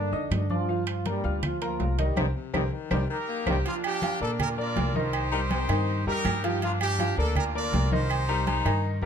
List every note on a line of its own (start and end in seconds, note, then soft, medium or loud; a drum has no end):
0.00 0.29 D3 medium
0.00 0.29 D4 loud
0.12 0.29 F2 medium
0.12 0.43 D#4 medium
0.12 0.43 D#5 medium
0.12 0.43 D#6 medium
0.12 high conga soft
0.30 1.18 G2 medium
0.30 0.50 D3 medium
0.30 0.51 D4 medium
0.30 high conga medium
0.30 high timbale medium
0.30 low timbale medium
0.30 claves medium
0.50 0.85 F3 medium
0.50 0.65 D4 medium
0.50 0.85 F4 medium
0.50 0.66 D5 medium
0.50 0.66 D6 medium
0.50 high conga medium
0.69 0.99 F3 medium
0.69 0.99 F4 medium
0.69 0.99 F5 medium
0.69 high conga soft
0.87 1.05 F3 medium
0.87 1.05 F4 medium
0.87 high conga soft
0.87 high timbale medium
0.87 claves medium
1.06 1.41 G2 medium
1.06 1.41 G3 medium
1.06 1.21 A#3 medium
1.06 1.21 A#4 medium
1.06 1.21 A#5 medium
1.06 high conga medium
1.06 high timbale medium
1.06 low timbale medium
1.24 1.76 D2 medium
1.24 1.54 F4 medium
1.24 1.55 F5 medium
1.24 1.55 F6 medium
1.43 1.62 F3 medium
1.43 1.61 F4 medium
1.43 high conga soft
1.43 low conga medium
1.43 high timbale medium
1.43 claves medium
1.61 1.97 F3 medium
1.61 1.92 A#3 medium
1.61 1.97 F4 medium
1.61 1.92 A#4 medium
1.61 1.92 A#5 medium
1.61 high conga soft
1.61 high timbale medium
1.80 2.14 C2 medium
1.80 high conga medium
1.80 low timbale medium
1.98 2.17 G2 medium
1.98 2.14 D#3 medium
1.98 2.17 G3 medium
1.98 2.14 D#4 medium
1.98 2.14 D#5 medium
1.98 high conga soft
1.98 high timbale medium
2.16 2.30 C2 medium
2.16 2.26 C3 loud
2.16 2.26 D#3 loud
2.16 2.26 G3 medium
2.16 2.29 G4 medium
2.16 2.29 A#4 medium
2.16 2.29 C5 medium
2.16 high conga loud
2.16 high timbale loud
2.16 claves medium
2.36 2.56 C3 medium
2.53 2.68 C2 medium
2.53 2.63 C3 medium
2.53 2.74 D3 medium
2.53 2.63 D#3 medium
2.53 2.63 G3 medium
2.53 2.66 G4 medium
2.53 2.66 A#4 medium
2.53 2.66 C5 medium
2.53 high conga medium
2.53 high timbale medium
2.53 claves loud
2.73 2.90 D#3 medium
2.90 3.05 C2 loud
2.90 3.00 C3 medium
2.90 3.08 D#3 medium
2.90 3.00 D#3 medium
2.90 3.00 G3 medium
2.90 3.03 G4 loud
2.90 3.03 A#4 medium
2.90 3.03 C5 loud
2.90 high conga loud
2.90 high timbale medium
2.90 claves medium
3.10 3.18 D#3 medium
3.10 3.62 D#4 medium
3.10 3.46 G4 medium
3.10 3.45 A#4 loud
3.28 3.63 A#3 medium
3.46 3.60 C2 medium
3.46 3.56 C3 medium
3.46 3.56 D#3 medium
3.46 3.56 G3 medium
3.46 3.59 G4 medium
3.46 3.65 G4 medium
3.46 3.59 A#4 medium
3.46 3.59 C5 medium
3.46 high conga loud
3.46 high timbale loud
3.46 claves medium
3.65 3.96 F3 medium
3.65 3.84 A#3 medium
3.65 3.84 D4 medium
3.65 3.96 F4 medium
3.65 3.75 F4 medium
3.65 3.96 F5 medium
3.65 low agogo medium
3.84 4.55 A#3 medium
3.84 4.40 D4 medium
3.84 4.19 G4 loud
3.84 high conga soft
3.84 low agogo loud
3.84 claves medium
4.02 4.17 F3 medium
4.02 4.18 F4 medium
4.02 4.18 F5 medium
4.02 high conga medium
4.02 low timbale medium
4.02 low agogo medium
4.21 4.73 A#2 medium
4.21 4.52 A#3 medium
4.21 4.30 A4 medium
4.21 4.52 A#4 medium
4.21 4.52 D5 medium
4.21 high conga soft
4.39 5.10 D4 medium
4.39 4.58 F4 medium
4.39 4.49 A#4 loud
4.39 high conga soft
4.39 low conga medium
4.39 low agogo loud
4.39 claves medium
4.58 4.88 A#3 medium
4.58 5.10 F4 medium
4.58 4.88 A#4 medium
4.58 5.10 A#4 medium
4.58 4.89 D5 medium
4.58 4.93 D5 loud
4.58 high conga soft
4.76 5.63 C2 medium
4.76 high conga medium
4.76 low timbale medium
4.76 low agogo medium
4.94 5.26 D#3 medium
4.94 5.26 D#4 medium
4.94 6.03 D#4 medium
4.94 6.03 G4 medium
4.94 6.03 C5 loud
4.94 5.26 D#5 medium
4.94 high conga medium
5.13 high conga soft
5.13 low agogo loud
5.13 claves medium
5.32 5.63 G3 medium
5.32 5.40 D#4 loud
5.32 5.63 G4 medium
5.32 5.63 A#4 medium
5.32 high conga soft
5.51 5.94 C4 medium
5.51 high conga medium
5.51 low timbale medium
5.51 low agogo medium
5.69 6.03 G2 loud
5.69 6.00 D#3 medium
5.69 6.00 D#4 medium
5.69 6.00 D#5 medium
5.69 high conga soft
5.69 low agogo loud
5.69 claves medium
5.88 high conga soft
6.06 6.23 F2 medium
6.06 6.37 G3 medium
6.06 6.58 D#4 medium
6.06 6.43 G4 medium
6.06 6.37 G4 medium
6.06 6.41 A#4 loud
6.06 6.37 A#4 medium
6.06 high conga soft
6.25 7.11 G2 medium
6.25 high conga medium
6.25 low timbale medium
6.25 low agogo loud
6.25 claves medium
6.43 6.59 F3 loud
6.43 6.59 F4 medium
6.43 6.62 G4 medium
6.43 6.59 F5 medium
6.43 low agogo medium
6.62 6.93 F3 medium
6.62 6.80 A#3 medium
6.62 6.80 D4 medium
6.62 6.71 F4 medium
6.62 6.93 F4 medium
6.62 6.93 F5 medium
6.62 high conga soft
6.62 low agogo medium
6.80 7.51 A#3 medium
6.80 7.36 D4 medium
6.80 7.15 G4 loud
6.80 high conga soft
6.80 low agogo loud
6.80 claves medium
6.99 7.14 F3 medium
6.99 7.15 F4 medium
6.99 7.15 F5 medium
6.99 high conga medium
6.99 low timbale medium
6.99 low agogo medium
7.17 7.69 D2 medium
7.17 7.48 A#3 medium
7.17 7.35 A4 medium
7.17 7.48 A#4 medium
7.17 7.49 D5 medium
7.17 high conga soft
7.36 8.07 D4 medium
7.36 7.55 F4 medium
7.36 7.45 A#4 loud
7.36 high conga soft
7.36 low conga medium
7.36 low agogo loud
7.36 claves medium
7.54 7.85 A#3 medium
7.54 8.07 F4 medium
7.54 7.85 A#4 medium
7.54 8.07 A#4 medium
7.54 7.86 D5 medium
7.54 7.90 D5 loud
7.54 high conga soft
7.72 8.59 C2 loud
7.72 high conga medium
7.72 low timbale medium
7.72 low agogo medium
7.92 8.22 D#3 medium
7.92 8.22 D#4 medium
7.92 8.72 D#4 medium
7.92 8.72 G4 medium
7.92 8.76 C5 loud
7.92 8.22 D#5 medium
7.92 high conga medium
8.10 high conga soft
8.10 low agogo loud
8.10 claves medium
8.28 8.59 G3 medium
8.28 8.46 D#4 loud
8.28 8.59 G4 medium
8.28 8.59 A#4 medium
8.28 high conga soft
8.47 8.90 D#4 loud
8.47 high conga medium
8.47 low timbale medium
8.47 low agogo medium
8.65 9.00 G2 medium
8.65 8.96 D#3 medium
8.65 8.96 D#4 medium
8.65 8.96 D#5 medium
8.65 high conga soft
8.65 low agogo loud
8.65 claves medium
8.84 high conga soft
9.01 9.05 F2 medium
9.01 9.05 G3 medium